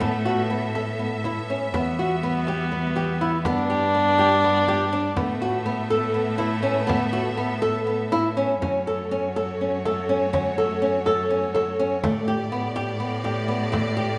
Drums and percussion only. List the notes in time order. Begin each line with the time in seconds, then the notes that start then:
0.01 frame drum
0.26 frame drum
0.75 frame drum
1.24 frame drum
1.50 frame drum
1.74 frame drum
2.24 frame drum
2.47 frame drum
2.72 frame drum
2.96 frame drum
3.45 frame drum
3.94 frame drum
4.18 frame drum
4.45 frame drum
4.68 frame drum
5.17 frame drum
5.66 frame drum
5.91 frame drum
6.15 frame drum
6.40 frame drum
6.89 frame drum
7.38 frame drum
7.62 frame drum
8.12 frame drum
8.62 frame drum
9.36 frame drum
9.85 frame drum
10.34 frame drum
11.06 frame drum
11.56 frame drum
12.04 frame drum
12.76 frame drum
13.25 frame drum
13.73 frame drum